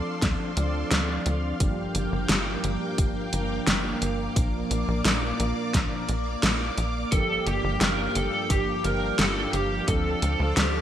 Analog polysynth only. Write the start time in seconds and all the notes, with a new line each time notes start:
Already playing: F3 C4 D4 A4
0.57 F3 C4 D4 D5
1.60 G2 F3 A#3 D4 G4
3.33 G2 F3 A#3 D4 A#4
4.36 A#2 F3 A#3 D4 A#4
7.12 G2 F3 A#3 D4 G4
8.85 G2 F3 A#3 D4 G4
9.88 F3 C4 D4 A4